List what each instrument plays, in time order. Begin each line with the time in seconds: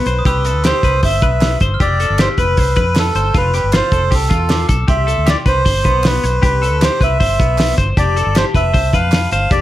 Already playing: melodica B4, glockenspiel C6
0.06 fingered electric bass B1, clean electric guitar C5, hi-hat pedal, open hi-hat
0.19 glockenspiel D#6
0.25 fingered electric bass C2, clean electric guitar G4, melodica B4, glockenspiel E6, kick, hi-hat pedal, open hi-hat
0.45 clean electric guitar A4, hi-hat pedal, open hi-hat
0.55 fingered electric bass D2
0.64 clean electric guitar G4, melodica C5, snare, clap, hi-hat pedal, open hi-hat
0.83 fingered electric bass C2, clean electric guitar B4, kick, hi-hat pedal, open hi-hat
1.03 fingered electric bass G1, clean electric guitar C5, melodica E5, kick, hi-hat pedal, open hi-hat
1.21 fingered electric bass B1, clean electric guitar B4, kick, hi-hat pedal, open hi-hat
1.41 snare, clap, hi-hat pedal, open hi-hat
1.60 fingered electric bass G1, clean electric guitar C5, kick, hi-hat pedal, open hi-hat
1.74 glockenspiel F6
1.80 fingered electric bass F1, clean electric guitar G4, melodica D5, glockenspiel E6, kick, hi-hat pedal, open hi-hat
2.00 clean electric guitar A4, hi-hat pedal, open hi-hat
2.10 fingered electric bass G1
2.18 clean electric guitar G4, melodica C5, snare, clap, hi-hat pedal, open hi-hat
2.38 fingered electric bass F1, clean electric guitar B4, melodica B4, kick, hi-hat pedal, open hi-hat
2.57 fingered electric bass C2, clean electric guitar C5, kick, hi-hat pedal, open hi-hat
2.76 fingered electric bass F2, clean electric guitar B4, kick, hi-hat pedal, open hi-hat
2.95 melodica A4, snare, clap, hi-hat pedal, open hi-hat
3.15 fingered electric bass G1, clean electric guitar C5, hi-hat pedal, open hi-hat
3.34 fingered electric bass F1, clean electric guitar F4, melodica B4, kick, hi-hat pedal, open hi-hat
3.54 clean electric guitar G4, melodica B4, hi-hat pedal, open hi-hat
3.64 fingered electric bass G1
3.72 clean electric guitar F4, melodica C5, snare, clap, hi-hat pedal, open hi-hat
3.92 fingered electric bass F1, clean electric guitar A4, kick, hi-hat pedal, open hi-hat
4.11 fingered electric bass C2, clean electric guitar G4, melodica A4, kick, hi-hat pedal, open hi-hat
4.30 fingered electric bass E2, clean electric guitar F4, kick, hi-hat pedal, open hi-hat
4.50 glockenspiel D6, snare, clap, hi-hat pedal, open hi-hat
4.69 fingered electric bass B1, clean electric guitar A4, kick, hi-hat pedal, open hi-hat
4.88 fingered electric bass C2, clean electric guitar G4, melodica E5, glockenspiel C6, kick, hi-hat pedal, open hi-hat
5.07 clean electric guitar A4, hi-hat pedal, open hi-hat
5.18 fingered electric bass D2
5.26 clean electric guitar G4, melodica D5, snare, clap, hi-hat pedal, open hi-hat
5.46 fingered electric bass C2, clean electric guitar B4, melodica C5, kick, hi-hat pedal, open hi-hat
5.65 fingered electric bass G1, clean electric guitar C5, glockenspiel C6, kick, hi-hat pedal, open hi-hat
5.84 fingered electric bass B1, clean electric guitar B3, kick, hi-hat pedal, open hi-hat
6.04 melodica B4, snare, clap, hi-hat pedal, open hi-hat
6.23 fingered electric bass B1, clean electric guitar C5, hi-hat pedal, open hi-hat
6.42 fingered electric bass C2, clean electric guitar G4, melodica B4, kick, hi-hat pedal, open hi-hat
6.62 clean electric guitar A4, hi-hat pedal, open hi-hat
6.72 fingered electric bass D2
6.81 clean electric guitar G4, melodica C5, snare, clap, hi-hat pedal, open hi-hat
7.01 fingered electric bass C2, clean electric guitar B4, melodica E5, kick, hi-hat pedal, open hi-hat
7.20 fingered electric bass G1, clean electric guitar C5, kick, hi-hat pedal, open hi-hat
7.39 fingered electric bass B1, clean electric guitar B3, kick, hi-hat pedal, open hi-hat
7.58 snare, clap, hi-hat pedal, open hi-hat
7.78 fingered electric bass G1, clean electric guitar C5, kick, hi-hat pedal, open hi-hat
7.97 fingered electric bass F1, clean electric guitar G4, melodica D5, glockenspiel A5, kick, hi-hat pedal, open hi-hat
8.17 clean electric guitar A4, hi-hat pedal, open hi-hat
8.26 fingered electric bass G1
8.35 clean electric guitar G4, melodica C5, snare, clap, hi-hat pedal, open hi-hat
8.54 fingered electric bass F1, clean electric guitar B4, melodica E5, kick, hi-hat pedal, open hi-hat
8.74 fingered electric bass C2, clean electric guitar C5, kick, hi-hat pedal, open hi-hat
8.93 fingered electric bass F2, clean electric guitar B4, melodica F5, kick, hi-hat pedal, open hi-hat
9.12 snare, clap, hi-hat pedal, open hi-hat
9.31 fingered electric bass G1, clean electric guitar C5, melodica F5, hi-hat pedal, open hi-hat
9.51 fingered electric bass F1, clean electric guitar G4, melodica D5, kick, hi-hat pedal, open hi-hat